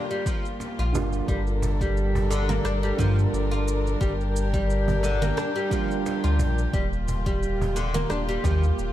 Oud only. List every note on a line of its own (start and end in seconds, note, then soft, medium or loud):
0.11 0.25 G3 medium
0.26 0.44 F3 medium
0.79 0.94 F4 medium
1.28 1.39 G3 medium
1.81 2.29 G3 medium
2.31 2.48 D3 medium
2.49 2.64 A#3 loud
2.65 2.75 D4 medium
2.83 2.98 G3 medium
2.99 3.17 F3 medium
3.51 3.66 F4 medium
4.01 4.12 G3 medium
4.54 5.02 G3 medium
5.04 5.21 D3 medium
5.22 5.37 A#3 loud
5.37 5.48 D4 medium
5.56 5.71 G3 medium
5.71 5.89 F3 medium
6.24 6.39 F4 medium
6.73 6.84 G3 medium
7.26 7.74 G3 medium
7.76 7.94 D3 medium
7.94 8.09 A#3 loud
8.10 8.21 D4 medium
8.29 8.44 G3 medium
8.44 8.62 F3 medium